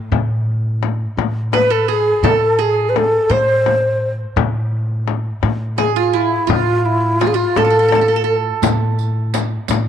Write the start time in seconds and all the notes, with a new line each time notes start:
Already playing: A2
0.12 A2, frame drum
0.83 frame drum
1.17 A2, frame drum
1.53 B4, frame drum
1.70 A4
1.88 G#4
2.23 A2 A4, frame drum
2.59 G#4
2.89 B4
2.96 A4, frame drum
3.30 A2 C5, frame drum
3.66 frame drum
4.36 A2, frame drum
5.08 frame drum
5.43 A2, frame drum
5.78 G#4, frame drum
5.96 F4
6.13 E4
6.47 A2 F4, frame drum
6.86 E4
7.20 F4, frame drum
7.27 G#4
7.34 F4
7.56 A2 A4, frame drum
7.65 A4
7.70 A4
7.79 A4
7.88 A4, frame drum
7.95 A4
8.01 A4
8.08 A4
8.16 A4
8.24 A4
8.62 A2, riq, frame drum
8.99 riq
9.34 riq, frame drum
9.68 A2, riq, frame drum